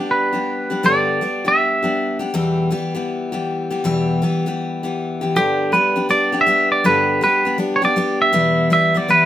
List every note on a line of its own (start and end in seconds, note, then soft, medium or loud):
0.00 0.34 G3 soft
0.00 0.34 B3 soft
0.00 0.32 D4 soft
0.00 0.13 G4 medium
0.00 0.32 G4 medium
0.11 0.87 B4 medium
0.33 0.71 G3 soft
0.33 0.71 B3 soft
0.33 0.69 D4 soft
0.33 0.70 G4 soft
0.70 0.83 G3 soft
0.70 0.83 B3 soft
0.70 0.84 D4 soft
0.70 0.84 G4 medium
0.83 1.21 G2 medium
0.83 1.22 D3 medium
0.83 1.21 G3 medium
0.83 1.22 B3 medium
0.83 1.21 D4 medium
0.83 1.23 G4 medium
0.83 1.48 D5 medium
1.21 1.45 G3 soft
1.21 1.45 B3 soft
1.21 1.44 D4 medium
1.21 1.43 G4 medium
1.45 1.84 G3 soft
1.45 1.83 B3 soft
1.45 1.83 D4 soft
1.45 1.82 G4 soft
1.45 2.18 E5 medium
1.83 2.21 G3 soft
1.83 2.20 B3 soft
1.83 2.19 D4 soft
1.83 2.19 G4 medium
2.19 2.33 G3 soft
2.19 2.33 B3 soft
2.19 2.34 D4 medium
2.19 2.33 G4 medium
2.34 2.72 E2 medium
2.34 2.72 B2 medium
2.34 2.69 E3 medium
2.34 2.71 G3 medium
2.34 2.71 B3 medium
2.34 2.72 G4 medium
2.70 2.95 E3 medium
2.70 2.95 G3 medium
2.70 2.94 B3 medium
2.70 2.93 G4 medium
2.95 3.33 E3 soft
2.95 3.33 G3 soft
2.95 3.32 B3 soft
2.95 3.32 G4 medium
3.32 3.71 E3 soft
3.32 3.71 G3 soft
3.32 3.70 B3 medium
3.32 3.70 G4 medium
3.70 3.83 E3 soft
3.70 3.84 G3 soft
3.70 3.84 B3 medium
3.70 3.84 G4 medium
3.84 4.22 E2 medium
3.84 4.22 B2 medium
3.84 4.21 E3 medium
3.84 4.21 G3 medium
3.84 4.22 B3 medium
3.84 4.22 G4 medium
4.22 4.46 E3 medium
4.22 4.46 G3 medium
4.22 4.45 B3 medium
4.22 4.45 G4 medium
4.46 4.84 E3 soft
4.46 4.83 G3 medium
4.46 4.83 B3 medium
4.46 4.82 G4 medium
4.83 5.22 E3 soft
4.83 5.21 G3 soft
4.83 5.21 B3 soft
4.83 5.20 G4 medium
5.21 5.36 E3 soft
5.21 5.35 G3 soft
5.21 5.35 B3 soft
5.21 5.35 G4 medium
5.36 5.73 G2 medium
5.36 5.73 D3 medium
5.36 5.72 G3 medium
5.36 5.73 B3 medium
5.36 5.73 D4 medium
5.36 5.74 G4 medium
5.72 5.96 G3 medium
5.72 5.96 B3 medium
5.72 5.95 D4 medium
5.72 5.94 G4 medium
5.72 6.07 B4 medium
5.96 6.08 G3 soft
5.96 6.08 B3 soft
5.96 6.09 D4 soft
5.96 6.09 G4 soft
6.09 6.33 G3 medium
6.09 6.33 B3 medium
6.09 6.32 D4 medium
6.09 6.31 G4 medium
6.09 6.41 D5 medium
6.32 6.45 G3 soft
6.32 6.46 B3 soft
6.32 6.47 D4 soft
6.32 6.46 G4 medium
6.41 6.69 E5 medium
6.47 6.84 G3 medium
6.47 6.85 B3 medium
6.47 6.84 D4 medium
6.47 6.85 G4 medium
6.72 6.85 D5 medium
6.84 7.22 G2 medium
6.84 7.22 D3 medium
6.84 7.21 G3 medium
6.84 7.22 B3 medium
6.84 7.21 D4 medium
6.84 7.23 G4 medium
6.84 7.22 B4 medium
7.21 7.45 G3 medium
7.21 7.45 B3 medium
7.21 7.45 D4 medium
7.21 7.44 G4 medium
7.21 7.57 B4 medium
7.45 7.57 G3 soft
7.45 7.58 B3 soft
7.45 7.58 D4 soft
7.45 7.59 G4 medium
7.58 7.82 G3 medium
7.58 7.82 B3 medium
7.58 7.81 D4 medium
7.58 7.81 G4 medium
7.76 7.84 C#5 medium
7.82 7.95 G3 soft
7.82 7.95 B3 soft
7.82 7.96 D4 soft
7.82 7.96 G4 medium
7.82 8.18 D5 medium
7.96 8.33 G3 medium
7.96 8.33 B3 medium
7.96 8.33 D4 medium
7.96 8.34 G4 medium
8.22 8.68 E5 loud
8.33 8.70 E2 medium
8.33 8.71 B2 medium
8.33 8.70 E3 medium
8.33 8.70 G3 medium
8.33 8.70 B3 medium
8.33 8.72 E4 medium
8.70 8.94 E3 medium
8.70 8.94 G3 medium
8.70 8.94 B3 medium
8.70 8.93 E4 medium
8.70 8.97 E5 medium
8.94 9.07 E3 soft
8.94 9.08 G3 soft
8.94 9.08 B3 soft
8.94 9.08 E4 medium
8.94 9.10 D5 medium
9.08 9.26 E3 medium
9.08 9.26 G3 medium
9.08 9.26 B3 medium
9.08 9.26 E4 medium
9.08 9.26 B4 medium